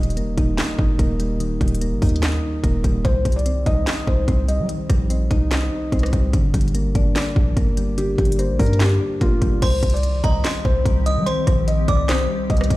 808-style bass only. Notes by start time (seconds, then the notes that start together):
Already playing: D#1
0.17 F1
0.28 D#1
0.38 D#1
0.79 G1
0.99 D#1
1.61 D#1
1.92 G1
2.02 D#2
2.64 D#1
2.84 D#1
3.05 C2
3.25 C2
3.66 C2
4.07 C2
4.28 C2
4.59 G3
4.90 A#1
5.31 C2
5.92 C2
6.13 C2
6.33 G1
6.54 G1
6.75 G#1
6.85 G1
6.95 G1
7.36 A#1
7.57 G1
8.18 G1
8.50 A#1
8.59 G2
9.21 G1
9.42 G1
9.62 C2
9.83 C2
10.24 C2
10.65 C2
10.86 C2
11.17 G3
11.47 A#1
11.88 C2
12.50 C2
12.70 C2